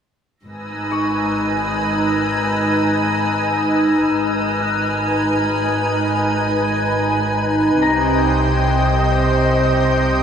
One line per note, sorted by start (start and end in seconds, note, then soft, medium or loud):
0.44 4.10 G#1 soft
0.44 4.10 G#2 soft
0.44 4.10 D#4 soft
0.44 4.10 B4 soft
0.44 4.10 G#5 soft
0.44 7.33 D#6 soft
0.44 4.92 E6 soft
0.44 5.48 A#6 soft
0.91 4.81 C#6 soft
4.13 7.79 G#1 soft
4.13 7.79 G#2 soft
4.13 7.79 D#4 soft
4.13 7.79 B4 soft
4.13 7.79 G#5 soft
4.60 7.87 F#6 soft
4.92 6.40 F6 soft
7.82 10.23 C2 soft
7.82 10.23 C3 soft
7.82 10.23 C5 soft
7.82 10.23 D#5 soft
7.82 10.23 G5 soft
7.82 10.23 A#5 soft
7.82 10.23 A#6 soft